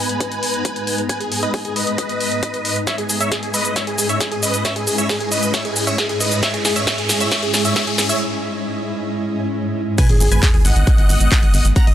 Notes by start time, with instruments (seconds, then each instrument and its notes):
Already playing: ambient pad G#2 G#3 B3 D#4 A#5
0.00 supersaw synth B4 G#5, synth pluck G#5
0.09 closed hi-hat
0.20 kick, closed hi-hat
0.32 closed hi-hat
0.43 open hi-hat
0.54 closed hi-hat
0.65 kick, closed hi-hat
0.76 closed hi-hat
0.87 open hi-hat
0.98 closed hi-hat
1.09 supersaw synth B4 G#5, synth pluck G#5, kick, closed hi-hat
1.20 synth pluck G#4, supersaw synth G#4, closed hi-hat
1.32 supersaw synth G#4, synth pluck G#4, open hi-hat
1.43 supersaw synth B4 D#5, synth pluck D#5, closed hi-hat
1.54 synth pluck G#4, supersaw synth G#4, kick, open hi-hat
1.65 supersaw synth G#4, synth pluck G#4, closed hi-hat
1.76 supersaw synth B4 D#5, synth pluck D#5, open hi-hat
1.87 closed hi-hat
1.98 kick, closed hi-hat
2.09 closed hi-hat
2.20 open hi-hat
2.32 closed hi-hat
2.43 kick, closed hi-hat
2.54 closed hi-hat
2.65 open hi-hat
2.76 closed hi-hat
2.87 ambient pad G#2 C#4 E4 D#5, supersaw synth C#5 E5, synth pluck E5, kick, snare, closed hi-hat, riser, shaker
2.98 supersaw synth G#4, synth pluck G#4, closed hi-hat
3.09 supersaw synth G#4, synth pluck G#4, open hi-hat, shaker
3.20 supersaw synth C#5 E5, synth pluck E5, closed hi-hat, shaker
3.32 supersaw synth G#4, synth pluck G#4, kick, snare, closed hi-hat, shaker
3.43 supersaw synth G#4, synth pluck G#4, closed hi-hat
3.54 supersaw synth B4 D#5, synth pluck D#5, open hi-hat, shaker
3.65 closed hi-hat, shaker
3.76 supersaw synth C#5 E5, synth pluck E5, kick, snare, closed hi-hat, shaker
3.87 supersaw synth G#4, synth pluck G#4, closed hi-hat
3.98 supersaw synth G#4, synth pluck G#4, open hi-hat, shaker
4.09 supersaw synth C#5 E5, synth pluck E5, closed hi-hat, shaker
4.20 supersaw synth G#4, synth pluck G#4, kick, snare, closed hi-hat, shaker
4.32 supersaw synth G#4, synth pluck G#4, closed hi-hat
4.43 supersaw synth B4 D#5, synth pluck D#5, open hi-hat, shaker
4.54 closed hi-hat, shaker
4.65 supersaw synth C#5 E5, synth pluck E5, kick, snare, closed hi-hat, shaker
4.76 supersaw synth G#4, synth pluck G#4, closed hi-hat
4.87 supersaw synth G#4, synth pluck G#4, open hi-hat, shaker
4.98 supersaw synth C#5 E5, synth pluck E5, closed hi-hat, shaker
5.09 supersaw synth G#4, synth pluck G#4, kick, snare, open hi-hat, shaker
5.20 supersaw synth G#4, synth pluck G#4, closed hi-hat
5.32 supersaw synth B4 D#5, synth pluck D#5, open hi-hat, shaker
5.43 closed hi-hat, shaker
5.54 supersaw synth C#5 E5, synth pluck E5, kick, snare, closed hi-hat, shaker
5.65 supersaw synth G#4, synth pluck G#4, closed hi-hat
5.76 supersaw synth G#4, synth pluck G#4, open hi-hat, shaker
5.87 supersaw synth C#5 E5, synth pluck E5, closed hi-hat, shaker
5.98 supersaw synth G#4, synth pluck G#4, kick, snare, closed hi-hat, shaker
6.09 supersaw synth G#4, synth pluck G#4, closed hi-hat
6.20 supersaw synth B4 D#5, synth pluck D#5, open hi-hat, shaker
6.32 closed hi-hat, shaker
6.43 supersaw synth C#5 E5, synth pluck E5, kick, snare, closed hi-hat, shaker
6.54 supersaw synth G#4, synth pluck G#4, closed hi-hat
6.65 supersaw synth G#4, synth pluck G#4, snare, open hi-hat, shaker
6.76 supersaw synth C#5 E5, synth pluck E5, closed hi-hat, shaker
6.87 supersaw synth C#5 E5, synth pluck E5, kick, snare, closed hi-hat, shaker
6.98 supersaw synth G#4, synth pluck G#4, closed hi-hat
7.09 supersaw synth G#4, synth pluck G#4, snare, open hi-hat, shaker
7.20 supersaw synth C#5 E5, synth pluck E5, closed hi-hat, shaker
7.32 supersaw synth C#5 E5, synth pluck E5, kick, snare, closed hi-hat, shaker
7.43 supersaw synth G#4, synth pluck G#4, closed hi-hat
7.54 synth pluck G#4, supersaw synth G#4, snare, open hi-hat, shaker
7.65 supersaw synth C#5 E5, synth pluck E5, closed hi-hat, shaker
7.76 supersaw synth C#5 E5, synth pluck E5, kick, snare, closed hi-hat, shaker
7.87 supersaw synth G#4, synth pluck G#4, closed hi-hat
7.98 supersaw synth G#4, synth pluck G#4, snare, open hi-hat, shaker
8.09 supersaw synth C#5 E5, synth pluck E5, closed hi-hat, shaker
9.98 ambient pad G#3 B3, supersaw synth B4 G#5, synth pluck G#5, kick, closed hi-hat, crash, sub drop, shaker
10.09 analog synth bass G#1, supersaw synth G#4, synth pluck G#4, closed hi-hat
10.20 analog synth bass G#1, synth pluck G#4, supersaw synth G#4, open hi-hat, shaker
10.32 analog synth bass G#1, supersaw synth B4 G#5, synth pluck G#5, closed hi-hat, shaker
10.43 synth pluck G#4, supersaw synth G#4, kick, clap, closed hi-hat, shaker
10.54 analog synth bass G#1, synth pluck G#4, supersaw synth G#4, closed hi-hat
10.65 analog synth bass G#1, supersaw synth D#5 F#5, synth pluck F#5, open hi-hat, shaker
10.76 analog synth bass G#1, closed hi-hat, shaker
10.87 kick, closed hi-hat, shaker
10.98 analog synth bass G#1, closed hi-hat
11.09 analog synth bass G#1, open hi-hat, shaker
11.20 analog synth bass G#1, closed hi-hat, shaker
11.32 kick, clap, closed hi-hat, shaker
11.43 analog synth bass G#1, closed hi-hat
11.54 analog synth bass G#1, open hi-hat, shaker
11.65 analog synth bass G#1, closed hi-hat, shaker
11.76 supersaw synth F#5 A#5, synth pluck A#5, kick, closed hi-hat, shaker
11.87 analog synth bass G#1, synth pluck D#5, supersaw synth D#5, closed hi-hat